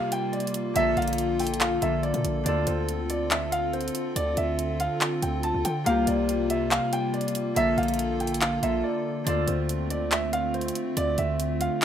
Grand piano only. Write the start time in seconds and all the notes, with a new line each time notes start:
0.12 G5
0.33 D5
0.76 E5
0.97 F5
1.40 G5
1.60 F5
1.82 E5
2.03 D5
2.46 D5
2.67 C5
3.10 D5
3.31 E5
3.52 F5
3.73 C5
4.16 D5
4.37 E5
4.80 F5
5.23 G5
5.44 A5
5.65 G5
5.86 F5
6.07 D5
6.50 E5
6.71 F5
6.93 G5
7.13 D5
7.57 E5
7.78 F5
8.21 G5
8.41 F5
8.63 E5
8.84 D5
9.26 D5
9.48 C5
9.91 D5
10.12 E5
10.33 F5
10.54 C5
10.97 D5
11.18 E5
11.61 F5